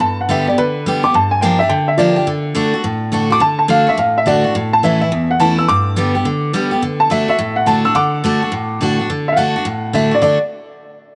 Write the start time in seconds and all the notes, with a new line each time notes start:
0.00 G2 A5
0.21 F#5
0.29 D3 G3 B3 G4 E5
0.47 B3 G4 D5
0.58 D3 B4
0.86 D3 G3 B3 G4
1.03 B3 G4 D6
1.14 G2 A5
1.31 G#5
1.41 F3 A#3 D4 G4 G5
1.59 D4 G4 E5
1.69 D3 G5
1.88 E5
1.97 F3 A#3 D4 F4 G4 D5
2.16 D4 G4
2.27 D3
2.55 D3 A3 D4 F#4
2.74 D4 F#4
2.84 A2
3.12 D3 A3 D4 F#4
3.30 D4 F#4 D6
3.40 D3 A5
3.59 A5
3.68 D3 A3 D4 F#4 F5
3.87 D4 F#4 E5
3.98 A2 F5
4.18 E5
4.26 D3 A3 D4 F#4 D5
4.44 D4 F#4
4.55 A2
4.73 A5
4.83 E3 A3 C#4 E4 E5
5.01 C#4 E4 E5
5.12 E2
5.31 F#5
5.40 E3 A3 C#4 E4 A5
5.58 C#4 E4 E6
5.68 G2 D6
5.96 D3 G3 B3 G4
6.15 B3 G4
6.25 D3
6.53 D3 G3 B3 G4
6.71 B3 G4
6.82 D3
7.00 A5
7.10 D3 A3 D4 F#4 E5
7.28 D4 F#4 E5
7.39 A2
7.56 F#5
7.66 D3 A3 D4 F#4 A5
7.85 D4 F#4 E6
7.95 D3 F#5 D6
8.24 D3 A3 D4 F#4
8.42 D4 F#4
8.52 A2
8.81 D3 A3 D4 F#4
8.99 D4 F#4
9.10 D3
9.28 E5
9.32 F5
9.36 D3 A3 D4 F#4 F#5
9.56 D4 F#4
9.65 A2
9.93 D3 A3 D4 F#4 E5
10.11 D4 F#4 D5
10.22 D3 A3 D4 F#4 D5